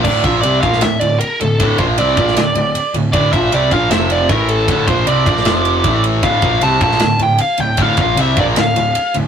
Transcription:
<<
  \new Staff \with { instrumentName = "Lead electric guitar" } { \time 4/4 \key d \minor \tempo 4 = 155 d''8 e''8 d''8 f''8 e''8 d''8 bes'8 a'8~ | a'8 c''8 d''2~ d''8 r8 | d''8 e''8 d''8 f''8 e''8 d''8 bes'8 a'8~ | a'8 c''8 d''2~ d''8 r8 |
f''4 a''8 a''4 g''8 f''8 g''8 | f''8 f''8 e''8 d''8 f''4. r8 | }
  \new Staff \with { instrumentName = "Overdriven electric guitar" } { \clef bass \time 4/4 \key d \minor <d, a, d>8 <bes, f bes>8 <c g c'>8 <bes, f bes>8 <d, a,>8 <d, a,>8 r8 <d, a,>8 | <d, a, d>8 <bes, f bes>8 <c g c'>8 <bes, f bes>8 <d, a,>8 <d, a,>8 r8 <d, a,>8 | <d, a, d>8 <bes, f bes>8 <c g c'>8 <bes, f bes>8 <f, c f>4 <a, e a>4 | <d, a, d>8 <bes, f bes>8 <c g c'>8 <bes, f bes>8 <f, c f>4 <a, e a>4 |
<d, a, d>8 <bes, f bes>8 <c g c'>8 <bes, f bes>8 <d, a,>8 <d, a,>8 r8 <d, a,>8 | <d, a, d>8 <bes, f bes>8 <c g c'>8 <bes, f bes>8 <d, a,>8 <d, a,>8 r8 <d, a,>8 | }
  \new Staff \with { instrumentName = "Overdriven electric guitar" } { \clef bass \time 4/4 \key d \minor <d, a, d>8 <bes, f bes>8 <c g c'>8 <bes, f bes>8 <d, a,>8 <d, a,>8 r8 <d, a,>8 | <d, a, d>8 <bes, f bes>8 <c g c'>8 <bes, f bes>8 <d, a,>8 <d, a,>8 r8 <d, a,>8 | <d, a, d>8 <bes, f bes>8 <c g c'>8 <bes, f bes>8 <f, c f>4 <a, e a>4 | <d, a, d>8 <bes, f bes>8 <c g c'>8 <bes, f bes>8 <f, c f>4 <a, e a>4 |
<d, a, d>8 <bes, f bes>8 <c g c'>8 <bes, f bes>8 <d, a,>8 <d, a,>8 r8 <d, a,>8 | <d, a, d>8 <bes, f bes>8 <c g c'>8 <bes, f bes>8 <d, a,>8 <d, a,>8 r8 <d, a,>8 | }
  \new Staff \with { instrumentName = "Picked electric bass" } { \clef bass \time 4/4 \key d \minor d,,8 bes,,8 c,8 bes,,8 d,,8 d,,8 r8 d,,8 | d,,8 bes,,8 c,8 bes,,8 d,,8 d,,8 r8 d,,8 | d,,8 bes,,8 c,8 bes,,8 f,,4 a,,4 | d,,8 bes,,8 c,8 bes,,8 f,,4 a,,4 |
d,,8 bes,,8 c,8 bes,,8 d,,8 d,,8 r8 d,,8 | d,,8 bes,,8 c,8 bes,,8 d,,8 d,,8 r8 d,,8 | }
  \new DrumStaff \with { instrumentName = "Drums" } \drummode { \time 4/4 <cymc bd>8 <bd cymr>8 cymr8 <bd cymr>16 sn16 <cymr sn>8 cymr8 cymr8 cymr8 | <bd cymr>8 <bd cymr>8 cymr8 <bd cymr>16 sn16 <cymr sn>8 cymr8 cymr8 cymr8 | <bd cymr>8 <bd cymr>8 cymr8 <bd cymr>8 <cymr sn>8 cymr8 <bd cymr>8 cymr8 | <bd cymr>8 <bd cymr>8 cymr8 <bd cymr>16 sn16 <cymr sn>8 cymr8 <bd cymr>8 cymr8 |
<bd cymr>8 <bd cymr>8 cymr8 <bd cymr>16 sn16 <cymr sn>8 cymr8 cymr8 cymr8 | <bd cymr>8 <bd cymr>8 cymr8 <bd cymr>8 <cymr sn>8 cymr8 cymr8 cymr8 | }
>>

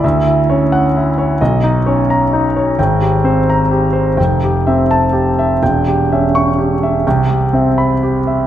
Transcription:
<<
  \new Staff \with { instrumentName = "Grand piano" } { \time 6/8 \key e \dorian \tempo 4. = 42 << { r8. fis''8 r4 ais''8 r16 | r8. ais''8 r4 a''8 r16 | r8. cis'''8 r4 b''8 r16 | } \\ { e''16 e'16 cis''8 e'16 cis''16 dis''16 dis'16 cis''8 dis'16 cis''16 | g''16 g'16 bis'8 g'16 bis'16 g''16 g'16 e''8 g'16 e''16 | g''16 g'16 e''8 g'16 e''16 g''16 g'16 e''8 g'16 e''16 | } >> }
  \new Staff \with { instrumentName = "Grand piano" } { \clef bass \time 6/8 \key e \dorian d,8 cis'8 r8 b,,8 cis'8 r8 | gis,,8 bis8 r8 f,,8 c'8 r8 | e,,8 cis'8 r8 c,8 c'8 r8 | }
>>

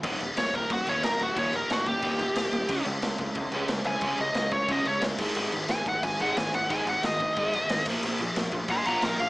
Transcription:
<<
  \new Staff \with { instrumentName = "Lead electric guitar" } { \time 4/4 \key aes \major \tempo 4 = 180 r4 des''8 bes'8 ges'8 des''8 bes'8 ges'8 | des''8 bes'8 ges'8 g'2~ g'8~ | g'8 r2. aes''8~ | aes''8 ees''8 ees''8 des''8 ees''8 des''8 r4 |
r4 aes''8 ges''8 aes''8 ges''8 aes''8 ges''8 | aes''8 ges''8 ees''2~ ees''8 r8 | r2 <aes'' c'''>8 <ges'' bes''>8 <bes' g''>8 f''8 | }
  \new Staff \with { instrumentName = "Overdriven electric guitar" } { \clef bass \time 4/4 \key aes \major <ees, bes, ees>8 <ees, bes,>8 <ees, bes,>8 <ees, bes,>8 <ees, bes,>8 <ees, bes, ees>8 <ees, bes,>8 <ees, bes,>8 | <ees, bes, ees>8 <ees, bes,>8 <ees, bes,>8 <ees, bes,>8 <ees, bes, ees>8 <ees, bes,>8 <ees, bes,>8 <ees, bes,>8 | <des aes des'>8 <des aes>8 <des aes>8 <des aes>8 <des aes>8 <des aes des'>8 <des aes>8 <des aes>8 | <des aes des'>8 <des aes>8 <des aes>8 <des aes>8 <des aes des'>8 <des aes>8 <des aes>8 <aes, ees aes>8 |
<aes, ees aes>8 <aes, ees>8 <aes, ees>8 <aes, ees>8 <aes, ees>8 <aes, ees aes>8 <aes, ees>8 <aes, ees>8 | <aes, ees aes>8 <aes, ees>8 <aes, ees>8 <aes, ees>8 <aes, ees aes>8 <aes, ees>8 <aes, ees>8 <bes, f bes>8 | <bes, f bes>8 <bes, f>8 <bes, f>8 <bes, f>8 <bes, f>8 <bes, f bes>8 <bes, f>8 <bes, f>8 | }
  \new Staff \with { instrumentName = "Picked electric bass" } { \clef bass \time 4/4 \key aes \major ees,,8 ees,,8 ees,,8 ees,,8 ees,,8 ees,,8 ees,,8 ees,,8 | ees,,8 ees,,8 ees,,4 ees,,8 ees,,8 ees,,8 ees,,8 | des,8 des,8 des,8 des,8 des,8 des,8 des,8 des,8 | des,8 des,8 des,4 des,8 des,8 des,8 aes,,8 |
aes,,8 aes,,8 aes,,8 aes,,8 aes,,8 aes,,8 aes,,8 aes,,8 | aes,,8 aes,,8 aes,,4 aes,,8 aes,,8 aes,,8 bes,,8 | bes,,8 bes,,8 bes,,8 bes,,8 bes,,8 bes,,8 bes,,8 bes,,8 | }
  \new DrumStaff \with { instrumentName = "Drums" } \drummode { \time 4/4 <cymc bd>8 cymc8 <cymc sn>8 <cymc bd>8 <cymc bd>8 cymc8 <cymc sn>8 cymc8 | <cymc bd>8 cymc8 <cymc sn>8 <cymc bd>8 <cymc bd>8 cymc8 <cymc sn>8 cymc8 | <cymc bd>8 cymc8 <cymc sn>8 <cymc bd>8 <cymc bd>8 cymc8 <cymc sn>8 cymc8 | <cymc bd>8 cymc8 <cymc sn>8 <cymc bd>8 <cymc bd>8 cymc8 <cymc sn>8 <cymc bd>8 |
cymc8 cymc8 <cymc sn>8 <cymc bd>8 <cymc bd>8 cymc8 <cymc sn>8 cymc8 | <cymc bd>8 cymc8 <cymc sn>8 <cymc bd>8 <cymc bd>8 cymc8 <cymc sn>8 <cymc bd>8 | cymc8 cymc8 <cymc sn>8 <cymc bd>8 <cymc bd>8 cymc8 <cymc sn>8 cymc8 | }
>>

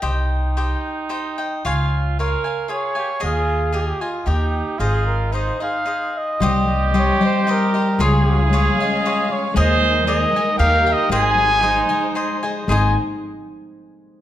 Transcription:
<<
  \new Staff \with { instrumentName = "Cavaquinho" } { \time 3/4 \key aes \major \tempo 4 = 114 <g' c'' ees'' g''>4 <g' c'' ees'' g''>4 <g' c'' ees'' g''>8 <c'' ees'' g''>8 | <f' des'' f'' aes''>4 <f' des'' f'' aes''>8 <des'' f'' aes''>8 <f' des'' f'' aes''>8 <des'' f'' aes''>8 | <aes' bes' ees'' aes''>4 <aes' bes' ees'' aes''>8 <bes' ees'' aes''>8 <g' bes' ees'' g''>4 | <ees' aes' c'' ees''>4 <ees' aes' c'' ees''>8 <aes' c'' ees''>8 <ees' aes' c'' ees''>4 |
<ees' g' c'' ees''>4 <ees' g' c'' ees''>8 <g' c'' ees''>8 <ees' g' c'' ees''>8 <g' c'' ees''>8 | <f' aes' des'' f''>4 <f' aes' des'' f''>8 <aes' des'' f''>8 <f' aes' des'' f''>4 | <aes' bes' ees'' aes''>4 <aes' bes' ees'' aes''>8 <bes' ees'' aes''>8 <g' bes' ees'' g''>8 <bes' ees'' g''>8 | <aes' c'' ees'' aes''>4 <aes' c'' ees'' aes''>8 <c'' ees'' aes''>8 <aes' c'' ees'' aes''>8 <c'' ees'' aes''>8 |
<aes' c'' ees'' aes''>8 r2 r8 | }
  \new Staff \with { instrumentName = "Trumpet" } { \time 3/4 \key aes \major r2. | r2 des''4 | aes'4 g'32 aes'32 g'16 f'8 g'4 | aes'8 bes'8 c''8 f''4 ees''8~ |
ees''4 des''8 c''8 bes'4 | aes'4 r8 ees''4 des''8 | ees''4 ees''4 \tuplet 3/2 { f''4 ees''8 } | aes''2 r4 |
aes''8 r2 r8 | }
  \new Staff \with { instrumentName = "Violin section" } { \time 3/4 \key aes \major << { r2. | r2. | r2. | r2. |
<c' ees''>2. | <des' f''>2. | <ees' bes'>2. | <aes c''>2. |
<aes ees' c''>8 r2 r8 | } \\ { r2. | r2. | r2. | r2. |
g'2. | aes'2. | aes'2 g'4 | r2. |
r2. | } >> }
  \new Staff \with { instrumentName = "Trumpet" } { \time 3/4 \key aes \major ees'2. | f'4 bes'4 aes'8 g'8 | f'4. r8 ees'4 | f'4 ees'8 ees'4 r8 |
g'2. | aes'2. | c''4. r8 bes'4 | aes'4 ees'4. r8 |
ees'8 r2 r8 | }
  \new Staff \with { instrumentName = "Harp" } { \clef bass \time 3/4 \key aes \major r2. | r2. | r2. | r2. |
g8 g8 g8 g8 g''8 g'8 | aes8 aes8 aes8 aes8 aes''8 aes'8 | aes8 aes8 aes8 aes8 g''8 g'8 | aes8 aes8 aes8 aes8 aes''8 aes'8 |
<aes c' ees' aes'>8 r2 r8 | }
  \new Staff \with { instrumentName = "Upright bass" } { \clef bass \time 3/4 \key aes \major c,2 r4 | des,2 r4 | ees,2 ees,4 | aes,,2 r4 |
c,2 r4 | des,2 r4 | ees,2 ees,4 | aes,,2 r4 |
aes,,8 r2 r8 | }
>>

